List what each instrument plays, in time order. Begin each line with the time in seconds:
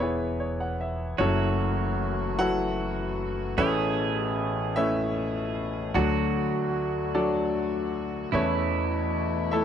Already playing: upright bass E1, grand piano E2 E3 G#4 E5
0.00 grand piano B3 E4 G#4 B4 C#5
0.40 grand piano C#5
0.60 grand piano F#5
0.81 grand piano E5
1.18 upright bass F#1, grand piano F#1 F#2 F#3 C#4 E4 A4 C#5, harmonium E3 A3 F#4, pedal steel guitar F#4
2.39 grand piano F#3 E4 F#4 A4 B4 F#5
3.56 upright bass A1, grand piano A1 A2 A3 C#4 E4 B4 C#5 E5, harmonium B2 C#4, pedal steel guitar G#4
4.76 grand piano A3 C#4 E4 B4 C#5 E5
5.94 upright bass D2, grand piano D2 D3 F#3 D4 F#4 A4 D5 F#5, harmonium D3 F#4, pedal steel guitar F#4
7.15 grand piano F#3 D4 F#4 A4 D5
8.32 upright bass E2, grand piano E2 E3 A3 C#4 E4 A4 B4 C#5, harmonium B2 E4, pedal steel guitar E4
9.51 grand piano A3 E4 A4 E5